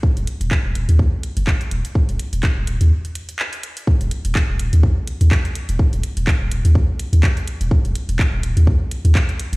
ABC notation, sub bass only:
X:1
M:4/4
L:1/16
Q:"Swing 16ths" 1/4=125
K:Ebm
V:1 name="Sub bass" clef=bass
z E,,, z E,,, z E,,, E,,, E,,2 z2 G,,, z2 E,,, z | z E,,, z E,,, z E,,, E,,, E,, z8 | z E,,, z E,,, z E,,, E,,, E,,2 z2 E,, z3 E,,, | z E,,, z E,,, z E,,, E,,, E,,2 z2 E,, z3 E,,, |
z E,,, z E,,, z E,,, E,,, E,,2 z2 E,, z3 E,,, |]